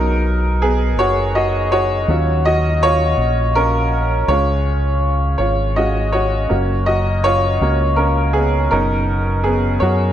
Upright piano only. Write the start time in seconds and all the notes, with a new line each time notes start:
Already playing: F#3 B3 D#4 A#4
0.62 B3 G#4
0.99 F#4 C#5
1.35 F#4 D#5
1.72 F#4 C#5
2.09 F#3 C#4 F4
2.45 F#4 D#5
2.83 F4 C#5
3.55 C#4 A#4
4.28 G#3 C#4 F4 C#5
5.38 F4 C#5
5.76 G#3 C#4 F4 F#4 D#5
6.12 F#4 C#5
6.49 A#3 C#4 F#4
6.86 F#4 D#5
7.24 F4 C#5
7.61 A#3 C#4 F#4
7.96 C#4 A#4
8.33 B3 G#4
8.71 B2 C#4 D#4 A#4
9.44 B3 G#4
9.80 F#4 C#5